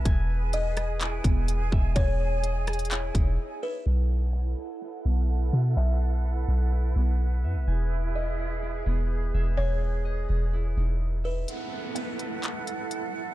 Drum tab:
HH |x-------x---x---x---x---x-------|x-------x---xxxxx---x-----------|--------------------------------|--------------------------------|
CP |----------------x---------------|----------------x---------------|--------------------------------|--------------------------------|
SD |------------r-------------------|------------r-------------------|--------------------------------|--------------------------------|
BD |o-------------------o-------o---|o-------------------o-----------|--------------------------------|--------------------------------|

HH |--------------------------------|--------------------------------|x-------x---x---x---x---x-------|
CP |--------------------------------|--------------------------------|----------------x---------------|
SD |--------------------------------|--------------------------------|--------------------------------|
BD |--------------------------------|--------------------------------|--------------------------------|